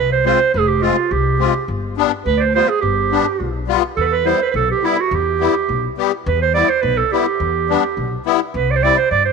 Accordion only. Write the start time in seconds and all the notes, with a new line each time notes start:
0.25 G#3 C4 F4
0.81 G#3 C4 F4
1.39 G#3 C4 F4
1.97 G3 B3 D4
2.54 G3 B3 F4
3.11 G3 B3 D4
3.68 G3 B3 F4
4.25 G3 B3 E4
4.83 G3 B3 E4
5.40 G3 B3 E4
5.98 G3 B3 G4
6.53 G3 B3 E4
7.12 G3 B3 E4
7.69 G3 B3 D4
8.26 G3 B3 E4
8.83 G3 C4 E4